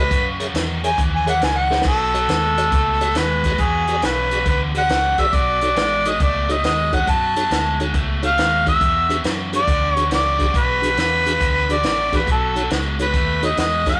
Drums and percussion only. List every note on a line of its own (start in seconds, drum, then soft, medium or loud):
0.11 kick loud
0.11 closed hi-hat medium
0.40 closed hi-hat medium
0.55 snare loud
0.55 closed hi-hat medium
0.84 closed hi-hat medium
0.98 kick loud
0.98 closed hi-hat medium
1.27 closed hi-hat medium
1.42 snare loud
1.42 closed hi-hat medium
1.72 snare medium
1.82 kick loud
1.82 snare loud
1.82 crash medium
2.15 closed hi-hat medium
2.29 snare loud
2.29 closed hi-hat medium
2.58 closed hi-hat medium
2.72 kick loud
2.72 closed hi-hat medium
3.01 closed hi-hat medium
3.15 snare loud
3.15 closed hi-hat medium
3.44 kick medium
3.44 snare soft
3.44 closed hi-hat medium
3.58 kick loud
3.58 closed hi-hat medium
3.87 closed hi-hat medium
4.02 snare loud
4.02 closed hi-hat medium
4.31 closed hi-hat medium
4.46 kick loud
4.46 closed hi-hat medium
4.75 closed hi-hat medium
4.89 snare loud
4.89 closed hi-hat medium
5.18 kick medium
5.18 closed hi-hat medium
5.33 kick loud
5.33 closed hi-hat medium
5.61 closed hi-hat medium
5.76 snare loud
5.76 closed hi-hat medium
6.05 closed hi-hat medium
6.20 kick loud
6.20 closed hi-hat medium
6.49 closed hi-hat medium
6.64 snare loud
6.64 closed hi-hat medium
6.93 kick medium
6.93 closed hi-hat medium
7.07 kick loud
7.07 closed hi-hat medium
7.36 closed hi-hat medium
7.51 snare loud
7.51 closed hi-hat medium
7.80 closed hi-hat medium
7.94 kick loud
7.94 closed hi-hat medium
8.23 closed hi-hat medium
8.38 snare loud
8.38 closed hi-hat medium
8.66 kick medium
8.66 closed hi-hat medium
8.81 kick loud
8.81 closed hi-hat medium
9.10 closed hi-hat medium
9.24 snare loud
9.24 closed hi-hat medium
9.53 closed hi-hat medium
9.68 kick loud
9.68 closed hi-hat medium
9.97 closed hi-hat medium
10.11 snare loud
10.11 closed hi-hat medium
10.40 kick medium
10.40 closed hi-hat medium
10.54 kick loud
10.54 closed hi-hat medium
10.83 closed hi-hat medium
10.97 snare loud
10.97 closed hi-hat medium
11.26 closed hi-hat medium
11.41 kick loud
11.41 closed hi-hat medium
11.70 closed hi-hat medium
11.83 snare loud
11.83 closed hi-hat medium
12.13 kick medium
12.13 snare soft
12.13 closed hi-hat medium
12.27 kick loud
12.27 closed hi-hat medium
12.56 closed hi-hat medium
12.70 snare loud
12.70 closed hi-hat medium
12.99 closed hi-hat medium
13.14 kick loud
13.14 closed hi-hat medium
13.43 closed hi-hat medium
13.57 snare loud
13.57 closed hi-hat medium
13.86 kick medium
13.86 snare soft
13.86 closed hi-hat medium